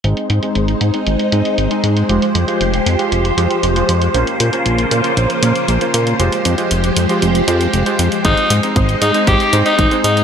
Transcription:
0.04 analog synth bass G#1, electric grand piano G#3 C4 D#4 C5, string machine G#3 D#4 C5, closed hi-hat
0.17 closed hi-hat
0.30 analog synth bass G#2, closed hi-hat
0.43 electric grand piano G#3 C4 D#4 C5, closed hi-hat
0.55 analog synth bass G#1, closed hi-hat
0.68 closed hi-hat
0.81 analog synth bass G#2, closed hi-hat
0.94 electric grand piano G#3 C4 D#4 C5, closed hi-hat
1.07 analog synth bass G#1, closed hi-hat
1.19 closed hi-hat
1.32 analog synth bass G#2, electric grand piano G#3 C4 D#4 C5, closed hi-hat
1.45 closed hi-hat
1.58 analog synth bass G#1, closed hi-hat
1.71 electric grand piano G#3 C4 D#4 C5, closed hi-hat
1.84 analog synth bass G#2, closed hi-hat
1.97 closed hi-hat
2.09 analog synth bass F1, string machine F3 G4, electric grand piano G#3 F4 G4 C5, closed hi-hat
2.22 closed hi-hat
2.35 analog synth bass F2, closed hi-hat
2.48 electric grand piano G#3 F4 G4 C5, closed hi-hat
2.61 analog synth bass F1, closed hi-hat
2.74 closed hi-hat
2.86 analog synth bass F2, closed hi-hat
2.99 electric grand piano G#3 F4 G4 C5, closed hi-hat
3.12 analog synth bass F1, closed hi-hat
3.25 closed hi-hat
3.37 analog synth bass F2, electric grand piano G#3 F4 G4 C5, closed hi-hat
3.51 closed hi-hat
3.63 analog synth bass F1, closed hi-hat
3.76 electric grand piano G#3 F4 G4 C5, closed hi-hat
3.89 analog synth bass F2, closed hi-hat
4.02 closed hi-hat
4.14 analog synth bass A#1, string machine C#3 A#3 F4, electric grand piano A#3 C#4 F4 C5, closed hi-hat
4.27 closed hi-hat
4.40 analog synth bass A#2, closed hi-hat
4.53 electric grand piano A#3 C#4 F4 C5, closed hi-hat
4.66 analog synth bass A#1, closed hi-hat
4.78 closed hi-hat
4.91 analog synth bass A#2, closed hi-hat
5.04 electric grand piano A#3 C#4 F4 C5, closed hi-hat
5.17 analog synth bass A#1, closed hi-hat
5.30 closed hi-hat
5.43 analog synth bass A#2, electric grand piano A#3 C#4 F4 C5, closed hi-hat
5.55 closed hi-hat
5.68 analog synth bass A#1, closed hi-hat
5.81 electric grand piano A#3 C#4 F4 C5, closed hi-hat
5.94 analog synth bass A#2, closed hi-hat
6.07 closed hi-hat
6.20 analog synth bass F1, string machine F3 G#3 G4, electric grand piano G#3 F4 G4 C5, closed hi-hat
6.32 closed hi-hat
6.45 analog synth bass F2, closed hi-hat
6.58 electric grand piano G#3 F4 G4 C5, closed hi-hat
6.71 analog synth bass F1, closed hi-hat
6.84 closed hi-hat
6.96 analog synth bass F2, closed hi-hat
7.09 electric grand piano G#3 F4 G4 C5, closed hi-hat
7.22 analog synth bass F1, closed hi-hat
7.35 closed hi-hat
7.48 analog synth bass F2, electric grand piano G#3 F4 G4 C5, closed hi-hat
7.61 closed hi-hat
7.73 analog synth bass F1, closed hi-hat
7.86 electric grand piano G#3 F4 G4 C5, closed hi-hat
7.99 analog synth bass F2, closed hi-hat
8.12 closed hi-hat
8.25 analog synth bass G#1, electric grand piano G#3 C4 D#4 C5, string machine G#3 D#4, alto saxophone D#4, kick, closed hi-hat
8.37 closed hi-hat
8.50 analog synth bass G#2, closed hi-hat
8.63 electric grand piano G#3 C4 D#4 C5, closed hi-hat
8.76 analog synth bass G#1, kick, closed hi-hat
8.89 closed hi-hat
9.02 analog synth bass G#2, alto saxophone D#4, closed hi-hat
9.14 electric grand piano G#3 C4 D#4 C5, closed hi-hat
9.27 analog synth bass G#1, alto saxophone G4, kick, closed hi-hat
9.40 closed hi-hat
9.53 analog synth bass G#2, electric grand piano G#3 C4 D#4 C5, closed hi-hat
9.66 alto saxophone D#4, closed hi-hat
9.79 analog synth bass G#1, kick, closed hi-hat
9.91 electric grand piano G#3 C4 D#4 C5, closed hi-hat
10.04 analog synth bass G#2, alto saxophone D#4, closed hi-hat
10.17 closed hi-hat

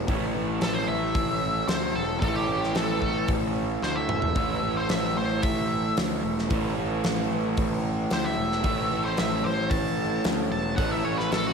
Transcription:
Already playing: overdriven electric guitar A3
0.07 picked electric bass A1, overdriven electric guitar A2 E3 A3, kick, open hi-hat
0.35 picked electric bass A1
0.61 picked electric bass A1, lead electric guitar A4, snare, open hi-hat
0.74 lead electric guitar C5
0.88 picked electric bass A1, lead electric guitar E5
1.15 picked electric bass A1, kick, open hi-hat
1.68 picked electric bass D2, lead electric guitar C5, snare, open hi-hat
1.96 picked electric bass E1, lead electric guitar A4
2.20 picked electric bass A1, overdriven electric guitar A2 E3, lead electric guitar A4, kick, open hi-hat
2.24 overdriven electric guitar A3
2.35 lead electric guitar G4
2.49 picked electric bass A1
2.63 snare
2.75 picked electric bass A1, lead electric guitar A4, snare, open hi-hat
3.02 picked electric bass A1, kick
3.28 picked electric bass A1, kick, open hi-hat
3.83 picked electric bass D2, lead electric guitar C5, snare
3.96 lead electric guitar E5
4.09 picked electric bass E1, mid tom
4.22 floor tom
4.35 picked electric bass A1, overdriven electric guitar A2 E3 A3, kick, open hi-hat
4.63 picked electric bass A1
4.77 lead electric guitar C5
4.89 picked electric bass A1, lead electric guitar E5, snare, open hi-hat
5.17 picked electric bass A1, lead electric guitar C5
5.42 picked electric bass A1, lead electric guitar E5, kick, open hi-hat
5.97 picked electric bass D2, snare, open hi-hat
6.24 picked electric bass E1
6.38 snare
6.49 picked electric bass A1, overdriven electric guitar A2 E3 A3, kick, open hi-hat
6.78 picked electric bass A1
7.04 picked electric bass A1, snare, open hi-hat
7.31 picked electric bass A1
7.57 picked electric bass A1, kick, open hi-hat
8.10 picked electric bass D2, lead electric guitar C5, snare, open hi-hat
8.25 lead electric guitar E5
8.38 picked electric bass E1
8.52 snare
8.64 picked electric bass A1, overdriven electric guitar A2 E3 A3, kick, open hi-hat
8.92 picked electric bass A1
9.05 lead electric guitar C5
9.17 picked electric bass A1, lead electric guitar E5, snare, open hi-hat
9.44 picked electric bass A1, lead electric guitar C5
9.70 picked electric bass A1, lead electric guitar A5, kick, open hi-hat
10.24 picked electric bass D2, snare, open hi-hat
10.52 picked electric bass E1, lead electric guitar A5
10.76 picked electric bass A1, overdriven electric guitar A2 E3, lead electric guitar F#5, kick, open hi-hat
10.80 overdriven electric guitar A3
10.91 lead electric guitar E5
11.05 picked electric bass A1, lead electric guitar C#5
11.18 lead electric guitar B4, snare
11.31 picked electric bass A1, lead electric guitar A4, snare, open hi-hat
11.47 lead electric guitar F#4

